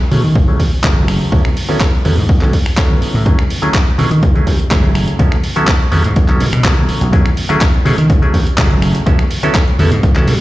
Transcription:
0.11 B2 F#3 A3 C#4 E4 G#4, open hi-hat, tambourine, high conga
0.24 D#3, tambourine
0.35 F#1, kick
0.48 F#3 A3 C#4 E4 G#4, high conga
0.59 F#2, kick, open hi-hat, tambourine
0.72 muted slap bass stroke, tambourine
0.84 F#1 F#3 A3 C#4 E4 G#4, kick, clap
0.96 high conga
1.08 finger snap, open hi-hat, tambourine
1.21 tambourine
1.32 B1 F#3 B3 C#4 E4 A4, kick, tambourine, high conga
1.45 finger snap
1.56 open hi-hat, tambourine
1.69 F#3 B3 C#4 E4 A4, tambourine, high conga
1.80 kick, clap
2.05 E2 F#3 B3 C#4 E4 A4, open hi-hat, tambourine, high conga
2.17 G#2, tambourine
2.29 B1, kick
2.41 B1 F#3 B3 C#4 E4 A4, clap, high conga
2.53 kick, open hi-hat, tambourine
2.66 finger snap, tambourine
2.77 F#3 B3 C#4 E4 A4, kick, clap
2.90 high conga
3.02 muted slap bass stroke, open hi-hat, tambourine
3.14 A2, tambourine
3.26 F#3 A3 C#4 E4 G#4, kick, closed hi-hat, tambourine, high conga
3.39 finger snap, closed hi-hat
3.50 open hi-hat, tambourine
3.62 F#3 A3 C#4 E4 G#4, closed hi-hat, tambourine, high conga
3.74 kick, clap, closed hi-hat
3.87 closed hi-hat
3.98 B2 F#3 A3 C#4 E4 G#4, open hi-hat, tambourine, high conga
4.11 D#3, closed hi-hat, tambourine
4.22 F#1, kick, closed hi-hat, tambourine
4.35 F#3 A3 C#4 E4 G#4, closed hi-hat, high conga
4.47 F#2, kick, open hi-hat, tambourine, low conga
4.59 muted slap bass stroke, closed hi-hat, tambourine
4.71 F#1 F#3 A3 C#4 E4 G#4, kick, clap, closed hi-hat, tambourine, low conga
4.84 closed hi-hat, high conga
4.95 finger snap, open hi-hat, tambourine
5.08 closed hi-hat, tambourine
5.19 B1 F#3 B3 C#4 E4 A4, kick, closed hi-hat, tambourine, high conga
5.32 finger snap, closed hi-hat
5.43 open hi-hat, tambourine
5.56 F#3 B3 C#4 E4 A4, closed hi-hat, tambourine, high conga
5.67 kick, clap, closed hi-hat
5.80 closed hi-hat
5.92 E2 F#3 B3 C#4 E4 A4, open hi-hat, tambourine, high conga
6.04 G#2, closed hi-hat, tambourine
6.16 B1, kick, closed hi-hat, tambourine
6.28 B1 F#3 B3 C#4 E4 A4, clap, closed hi-hat, high conga
6.40 B2, open hi-hat, tambourine, low conga
6.53 B2, finger snap, closed hi-hat, tambourine
6.64 F#3 B3 C#4 E4 A4, kick, clap, closed hi-hat, tambourine, low conga
6.77 closed hi-hat, high conga
6.88 muted slap bass stroke, open hi-hat, tambourine
7.01 B1, closed hi-hat, tambourine
7.13 F#2 F#3 A3 C#4 E4 G#4, kick, closed hi-hat, tambourine, high conga
7.26 finger snap, closed hi-hat
7.37 open hi-hat, tambourine
7.49 F#3 A3 C#4 E4 G#4, closed hi-hat, tambourine, high conga
7.61 kick, clap, closed hi-hat, tambourine
7.74 closed hi-hat
7.85 B2 F#3 A3 C#4 E4 G#4, open hi-hat, tambourine, high conga
7.98 D#3, closed hi-hat, tambourine
8.10 F#1, kick, closed hi-hat, tambourine
8.22 F#3 A3 C#4 E4 G#4, closed hi-hat, high conga
8.34 F#2, kick, open hi-hat, tambourine, low conga
8.47 muted slap bass stroke, closed hi-hat, tambourine
8.58 F#1 F#3 A3 C#4 E4 G#4, kick, clap, closed hi-hat, tambourine, low conga
8.70 closed hi-hat, high conga
8.82 finger snap, open hi-hat, tambourine
8.95 closed hi-hat, tambourine
9.06 B1 F#3 B3 C#4 E4 A4, kick, closed hi-hat, tambourine, high conga
9.19 finger snap, closed hi-hat
9.31 open hi-hat, tambourine
9.43 F#3 B3 C#4 E4 A4, closed hi-hat, tambourine, high conga
9.55 kick, clap, closed hi-hat
9.68 closed hi-hat
9.79 E2 F#3 B3 C#4 E4 A4, open hi-hat, tambourine, high conga
9.92 G#2, closed hi-hat, tambourine
10.03 B1, kick, closed hi-hat, tambourine
10.16 B1 F#3 B3 C#4 E4 A4, finger snap, clap, closed hi-hat, high conga
10.27 B2, open hi-hat, tambourine, low conga

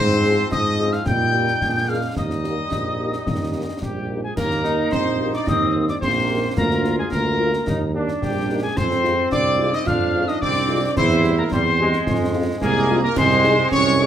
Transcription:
Already playing: G#2 F3 C4 C5 C6
0.10 snare
0.24 C4 F4 G#4, snare
0.52 G#2 D#5 D#6, concert bass drum, snare
0.79 C4 F4 G#4
0.93 F5 F6, snare
1.06 A#2 G3 D#4 G5 G6, concert bass drum, snare
1.33 A#3 D#4 G4
1.48 snare
1.61 A#2 G#3 D4, concert bass drum, snare
1.88 A#3 D4 G#4 F5 F6
2.17 D#2 G3 D#4 D#5 D#6, concert bass drum, snare
2.30 snare
2.44 A#3 D#4 G4, snare
2.72 A#1, concert bass drum, snare
2.99 A#3 D#4 G4
3.13 snare
3.26 D#2, concert bass drum, snare
3.55 A#3 D#4 G4
3.81 A#1 G3 G4 G5, concert bass drum, snare
4.09 A#3 D#4 G4
4.23 G#3 G#4 G#5
4.36 D#2 A#3 A#4 A#5, concert bass drum, snare, crash
4.51 snare
4.64 A#3 D#4 G4, snare
4.91 A#1 C4 C5 C6, concert bass drum, snare
5.20 A#3 D#4 G4
5.33 D4 D5 D6, snare
5.46 D#2 C4 D#4 D#5 D#6, concert bass drum, snare
5.75 A#3 D#4 G4
5.88 D4 D5 D6, snare
6.02 A#1 A#3 C4 C5 C6, concert bass drum, snare
6.31 A#3 D#4 G4
6.57 D2 A#3 F4 A#4 A#5, concert bass drum, snare, crash
6.71 snare
6.84 A#3 F4, snare
6.99 G#3 G#4 G#5
7.12 D2 A#3 A#4 A#5, concert bass drum, snare
7.40 A#3 F4
7.53 snare
7.67 D#2 D#4, concert bass drum, snare
7.95 A#3 D4 D#4 G4
8.08 snare
8.21 A#1 G3 G4 G5, concert bass drum, snare
8.49 A#3 D#4 G4
8.63 G#3 G#4 G#5
8.77 F2 C4 C5 C6, concert bass drum, snare, crash
8.91 snare
9.04 G#3 C4 F4, snare
9.31 C2 D4 D5 D6, concert bass drum, snare
9.59 G#3 C4 F4
9.73 D#4 D#5 D#6, snare
9.86 F2 D4 F4 F5 F6, concert bass drum, snare
10.14 G#3 C4 F4
10.28 D#4 D#5 D#6, snare
10.41 C2 C4 D4 D5 D6, concert bass drum, snare
10.69 G#3 C4 F4
10.96 E2 C4 E4 C5 C6, concert bass drum, snare, crash
11.10 snare
11.24 G3 C4 G4, snare
11.38 A#3 A#4 A#5
11.51 E2 G3 C4 C5 C6, concert bass drum, snare
11.79 G3 G#3 C4 G4
11.93 snare
12.07 F2, concert bass drum, snare
12.34 G#3 C4 F4
12.61 C2 G#3 A#3 G#4 G#5, concert bass drum, snare
12.89 G#3 C4 F4
13.03 A#3 A#4 A#5
13.16 C2 G#3 C4 C5 C6, concert bass drum, snare, crash
13.30 snare
13.44 G#3 D#4 G#4, snare
13.72 C2 C#4 C#5 C#6, concert bass drum, snare
14.00 G#3 D#4 G#4

